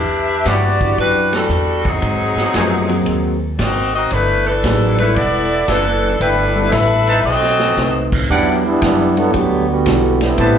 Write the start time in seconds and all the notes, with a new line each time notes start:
Already playing: E2 D4 G4 B4 E5
0.45 G2 B3 E4 F#4 G4 D5 F#5, kick, snare, hi-hat pedal, ride
0.80 E3 D4 F#4 G4, kick, ride
0.97 F#2 G3 D4 F#4 B4, kick, ride
1.33 G3 D4 F#4 A4, snare, ride
1.49 E2, hi-hat pedal
1.85 F#3 C4 G#4, kick, ride
1.89 D#4
2.02 G#2, kick, ride
2.36 muted upright bass stroke, snare
2.54 F#2 F3 A3 B3 F#4 G4 A#4 C5 G#5, kick, snare, hi-hat pedal, ride
2.89 F#3 A#3 C4 G#4, ride
3.06 D#2, kick, ride
3.57 G#1 C4 F#4 D5, kick, snare, hi-hat pedal, ride
3.62 A#4 D#5
3.95 C4 F#4 A#4 D#5
4.11 G1 A3 D4 E4 B4, kick, ride
4.47 E3 B3 D4 A4
4.64 A1 F#3 A#3 D#4 G#4, kick, snare, hi-hat pedal, ride
4.98 G3 A3 B3 D4 E4 A4 B4, ride
5.15 E1 B3 E4 A4 D5, kick, ride
5.68 F#1 E3 B3 D4 A4, kick, snare, hi-hat pedal, ride
6.20 G1 A3 D4 E4 A4 B4 G5, kick, ride
6.55 G3 B3 E4 A4
6.72 A1 D4 A4 B4 E5, kick, snare, hi-hat pedal, ride
7.07 D#4 B4 C5 A5, ride
7.24 B1 C4 F#4 A4 D#5
7.43 snare
7.59 snare
7.77 C2 A3 C4 D#4 B4, snare, hi-hat pedal
8.12 kick, crash
8.30 E2 F#3 G3 B3 D4 E4 G4 D5 F#5, kick
8.66 G3 B3 D4 E4
8.82 F#2, kick, snare, hi-hat pedal, ride
9.16 F#3 G3 B3 D4 E4 F#4 A4 B4, ride
9.33 D2 D3 F#3 B3 G4, kick, ride
9.69 D3 G3 B3 F#4
9.86 B1 G3 D4 E4 F#4 A4, kick, snare, hi-hat pedal, ride
10.21 G3 B3 C4 E4, snare, ride
10.38 A1 A3 C4 E4 G4 B4 C5 A5, kick, ride